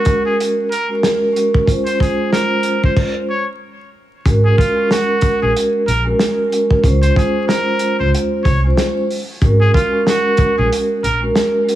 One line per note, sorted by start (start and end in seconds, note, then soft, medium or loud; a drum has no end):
0.00 0.63 G#3 medium
0.00 0.63 C#4 medium
0.00 0.23 F#4 medium
0.00 0.64 F#4 medium
0.00 0.64 A#4 loud
0.05 kick medium
0.05 closed hi-hat medium
0.25 0.37 G#4 medium
0.40 closed hi-hat medium
0.72 0.89 A#4 medium
0.72 closed hi-hat medium
0.88 1.31 G#3 medium
0.88 1.32 C#4 medium
0.88 1.32 F#4 medium
0.88 1.33 A#4 loud
1.03 snare loud
1.03 closed hi-hat medium
1.32 1.64 G#3 medium
1.32 1.64 C#4 medium
1.32 1.65 F#4 medium
1.32 1.65 A#4 medium
1.36 closed hi-hat medium
1.54 kick medium
1.66 1.97 G#3 medium
1.66 1.97 C#4 medium
1.66 1.98 F4 medium
1.66 1.98 C5 loud
1.66 kick loud
1.66 closed hi-hat medium
1.86 1.98 C5 medium
1.86 closed hi-hat medium
1.99 3.34 G#3 medium
1.99 3.34 C#4 medium
1.99 3.35 F4 medium
1.99 2.30 G#4 medium
1.99 3.35 C5 loud
1.99 kick medium
1.99 closed hi-hat medium
2.32 2.81 A#4 medium
2.32 snare loud
2.32 closed hi-hat medium
2.63 closed hi-hat medium
2.84 2.96 C5 medium
2.84 kick medium
2.97 kick loud
2.97 crash medium
3.29 3.47 C#5 medium
4.25 4.50 G#1 loud
4.25 4.72 G#3 medium
4.25 4.73 C#4 medium
4.25 4.73 F#4 medium
4.25 4.74 A#4 loud
4.25 kick loud
4.25 closed hi-hat medium
4.45 4.56 G#4 medium
4.58 4.87 F4 medium
4.58 kick medium
4.58 closed hi-hat medium
4.76 5.79 G#3 medium
4.76 5.79 C#4 medium
4.76 5.80 F#4 medium
4.76 5.80 A#4 loud
4.91 5.39 F#4 medium
4.91 snare loud
4.91 closed hi-hat medium
5.21 kick medium
5.21 closed hi-hat medium
5.42 5.52 A#1 medium
5.42 5.53 G#4 medium
5.56 closed hi-hat medium
5.87 6.11 A#1 medium
5.87 6.05 A#4 medium
5.87 closed hi-hat medium
6.04 6.47 G#3 medium
6.04 6.48 C#4 medium
6.04 6.48 F#4 medium
6.04 6.49 A#4 loud
6.19 snare loud
6.19 closed hi-hat medium
6.48 6.80 G#3 medium
6.48 6.80 C#4 medium
6.48 6.81 F#4 medium
6.48 6.81 A#4 medium
6.52 closed hi-hat medium
6.71 kick medium
6.82 7.08 C#2 loud
6.82 7.13 G#3 medium
6.82 7.14 C#4 medium
6.82 7.14 F4 medium
6.82 7.15 C5 loud
6.82 kick loud
6.82 closed hi-hat medium
7.02 7.14 C5 medium
7.02 closed hi-hat medium
7.15 8.50 G#3 medium
7.15 8.50 C#4 medium
7.15 8.51 F4 medium
7.15 7.46 G#4 medium
7.15 8.51 C5 loud
7.15 kick loud
7.15 closed hi-hat medium
7.48 7.97 A#4 medium
7.48 snare loud
7.48 closed hi-hat medium
7.79 closed hi-hat medium
7.99 8.10 C#2 medium
7.99 8.11 C5 medium
8.15 closed hi-hat medium
8.43 8.69 C2 medium
8.43 8.62 C#5 medium
8.43 kick medium
8.43 closed hi-hat medium
8.64 9.06 G#3 medium
8.64 9.07 C#4 medium
8.64 9.07 F4 medium
8.64 9.08 C5 loud
8.77 snare loud
8.77 closed hi-hat medium
9.11 open hi-hat medium
9.42 9.66 G#1 loud
9.42 9.89 G#3 medium
9.42 9.89 C#4 medium
9.42 9.90 F#4 medium
9.42 9.90 A#4 loud
9.42 kick loud
9.42 closed hi-hat medium
9.61 9.73 G#4 medium
9.74 10.03 F4 medium
9.74 kick loud
9.74 closed hi-hat medium
9.92 10.95 G#3 loud
9.92 10.96 C#4 medium
9.92 10.96 F#4 medium
9.92 10.96 A#4 loud
10.07 10.56 F#4 medium
10.07 snare loud
10.07 closed hi-hat medium
10.37 kick medium
10.37 closed hi-hat medium
10.58 10.68 A#1 medium
10.58 10.69 G#4 medium
10.73 closed hi-hat medium
11.03 11.27 A#1 medium
11.03 11.21 A#4 medium
11.03 closed hi-hat medium
11.21 11.63 G#3 medium
11.21 11.64 C#4 medium
11.21 11.64 F#4 medium
11.21 11.65 A#4 loud
11.35 snare loud
11.35 closed hi-hat medium
11.64 11.75 G#3 medium
11.64 11.75 C#4 medium
11.64 11.75 F#4 medium
11.64 11.75 A#4 medium
11.69 closed hi-hat medium